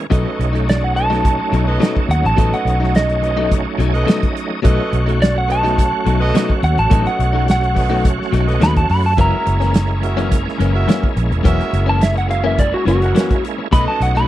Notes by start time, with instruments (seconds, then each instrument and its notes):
0.10 fingered electric bass B1, clean electric guitar B2 F#3 A3 D#4, tonewheel organ F#3 A3 C#4 D#4, horn section A4 B4 D#5, kick, closed hi-hat
0.38 fingered electric bass B1, muted clean electric guitar stroke, closed hi-hat
0.53 clean electric guitar F#3 A3 D#4, closed hi-hat
0.66 electric slide guitar D5, muted clean electric guitar stroke, snare, closed hi-hat
0.82 electric slide guitar F#5, muted clean electric guitar stroke
0.95 horn section A4 B4 D#5, electric slide guitar A5, muted clean electric guitar stroke, closed hi-hat
1.10 clean electric guitar B2 F#3 A3 D#4, snare, closed hi-hat
1.25 kick, closed hi-hat
1.39 muted clean electric guitar stroke
1.52 fingered electric bass B1, clean electric guitar B2 F#3 A3 D#4, closed hi-hat
1.66 horn section A4 B4 D#5, muted clean electric guitar stroke
1.80 clean electric guitar B2 F#3 A3 D#4, snare, closed hi-hat
1.97 kick
2.09 fingered electric bass D#2, electric slide guitar F#5, muted clean electric guitar stroke, closed hi-hat
2.24 fingered electric bass A1, electric slide guitar A5, muted clean electric guitar stroke, closed hi-hat
2.37 fingered electric bass A1, clean electric guitar B2 F#3 A3 D#4, horn section A4 B4 D#5, kick, closed hi-hat
2.54 electric slide guitar F#5, closed hi-hat
2.65 fingered electric bass B1, muted clean electric guitar stroke, closed hi-hat
2.80 clean electric guitar F#3 A3 D#4, snare
2.94 electric slide guitar D#5, muted clean electric guitar stroke, snare, closed hi-hat
3.08 muted clean electric guitar stroke, closed hi-hat
3.22 horn section A4 B4 D#5, muted clean electric guitar stroke, closed hi-hat
3.37 clean electric guitar B2 F#3 A3 D#4
3.51 kick, closed hi-hat
3.65 muted clean electric guitar stroke
3.78 fingered electric bass B1, clean electric guitar B2 F#3 A3 D#4, tonewheel organ G#5, closed hi-hat
3.93 horn section A4 B4 D#5, tonewheel organ F#5, muted clean electric guitar stroke, closed hi-hat
4.06 clean electric guitar B2 F#3 A3 D#4, tonewheel organ D#5, snare, closed hi-hat
4.23 kick, closed hi-hat
4.34 muted clean electric guitar stroke, closed hi-hat
4.49 muted clean electric guitar stroke
4.62 fingered electric bass B1, clean electric guitar B2 F#3 A3 D#4, tonewheel organ F#3 A3 C#4 F#4, horn section A4 B4 D#5, kick, closed hi-hat
4.92 fingered electric bass B1, muted clean electric guitar stroke, closed hi-hat
5.06 clean electric guitar F#3 A3 D#4, closed hi-hat
5.20 electric slide guitar D5, muted clean electric guitar stroke, snare, closed hi-hat
5.36 electric slide guitar F#5, muted clean electric guitar stroke
5.48 horn section A4 B4 D#5, electric slide guitar A5, muted clean electric guitar stroke, closed hi-hat
5.63 clean electric guitar B2 F#3 A3 D#4, snare, closed hi-hat
5.78 kick, closed hi-hat
5.92 muted clean electric guitar stroke
6.06 fingered electric bass B1, clean electric guitar B2 F#3 A3 D#4, closed hi-hat
6.20 horn section A4 B4 D#5, muted clean electric guitar stroke
6.34 clean electric guitar B2 F#3 A3 D#4, snare, closed hi-hat
6.50 kick
6.63 fingered electric bass D#2, electric slide guitar F#5, muted clean electric guitar stroke, closed hi-hat
6.78 fingered electric bass A1, electric slide guitar A5, muted clean electric guitar stroke, closed hi-hat
6.90 fingered electric bass A1, clean electric guitar B2 F#3 A3 D#4, horn section A4 B4 D#5, kick, closed hi-hat
7.06 electric slide guitar F#5, closed hi-hat
7.19 fingered electric bass B1, muted clean electric guitar stroke, closed hi-hat
7.33 clean electric guitar F#3 A3 D#4
7.47 muted clean electric guitar stroke, snare, closed hi-hat
7.51 electric slide guitar F#5
7.61 muted clean electric guitar stroke, closed hi-hat
7.75 horn section A4 B4 D#5, muted clean electric guitar stroke, kick, open hi-hat
7.90 clean electric guitar B2 F#3 A3 D#4
8.05 kick, closed hi-hat
8.18 muted clean electric guitar stroke, snare
8.31 fingered electric bass B1, clean electric guitar B2 F#3 A3 D#4, snare, closed hi-hat
8.47 horn section A4 B4 D#5, muted clean electric guitar stroke, snare, closed hi-hat
8.60 fingered electric bass D#2, clean electric guitar B2 F#3 A3 D#4, electric slide guitar B5, snare, closed hi-hat
8.76 electric slide guitar A5, kick, closed hi-hat
8.89 fingered electric bass F#2, electric slide guitar B5, muted clean electric guitar stroke, open hi-hat
9.04 electric slide guitar A5, muted clean electric guitar stroke
9.17 fingered electric bass F#1, clean electric guitar F#2 E3 A#3 C#4, tonewheel organ G#3 A#3 C#4 E4, horn section F#4 A#4 E5, kick, closed hi-hat
9.21 electric slide guitar A#5
9.45 fingered electric bass F#1, muted clean electric guitar stroke, closed hi-hat
9.60 clean electric guitar E3 A#3 C#4, snare, closed hi-hat
9.74 muted clean electric guitar stroke, snare, closed hi-hat
9.89 muted clean electric guitar stroke
10.02 horn section F#4 A#4 E5, muted clean electric guitar stroke, closed hi-hat
10.17 clean electric guitar F#2 E3 A#3 C#4, closed hi-hat
10.32 kick, closed hi-hat
10.46 muted clean electric guitar stroke, snare
10.59 fingered electric bass F#1, clean electric guitar F#2 E3 A#3 C#4, closed hi-hat
10.74 horn section F#4 A#4 E5, muted clean electric guitar stroke
10.88 clean electric guitar F#2 E3 A#3 C#4, snare, closed hi-hat
11.03 kick
11.16 fingered electric bass A#1, muted clean electric guitar stroke, closed hi-hat
11.31 fingered electric bass E1, muted clean electric guitar stroke, closed hi-hat
11.43 fingered electric bass E1, clean electric guitar F#2 E3 A#3 C#4, horn section F#4 A#4 E5, kick, closed hi-hat
11.61 closed hi-hat
11.72 fingered electric bass F#1, muted clean electric guitar stroke, closed hi-hat
11.86 clean electric guitar E3 A#3 C#4, electric slide guitar A5
12.01 electric slide guitar E5, muted clean electric guitar stroke, snare, closed hi-hat
12.16 electric slide guitar F#5, muted clean electric guitar stroke, closed hi-hat
12.29 horn section F#4 A#4 E5, electric slide guitar F5, muted clean electric guitar stroke, closed hi-hat
12.44 clean electric guitar F#2 E3 A#3 C#4, electric slide guitar E5
12.58 electric slide guitar D5, kick, closed hi-hat
12.72 electric slide guitar F#4, muted clean electric guitar stroke
12.85 fingered electric bass F#1, clean electric guitar F#2 E3 A#3 C#4, electric slide guitar F#4, closed hi-hat
13.00 horn section F#4 A#4 F#5, muted clean electric guitar stroke, closed hi-hat
13.14 clean electric guitar F#2 E3 A#3 C#4, snare, closed hi-hat
13.31 kick, closed hi-hat
13.43 muted clean electric guitar stroke, closed hi-hat
13.58 muted clean electric guitar stroke
13.72 fingered electric bass B1, clean electric guitar B2 F#3 A3 D#4, tonewheel organ A3 C#4 D#4 F#4, horn section A4 B4 D#5, electric slide guitar B5, kick, closed hi-hat
13.88 electric slide guitar A5
14.00 fingered electric bass B1, electric slide guitar F#5, muted clean electric guitar stroke, closed hi-hat
14.15 clean electric guitar F#3 A3 D#4, electric slide guitar B5, closed hi-hat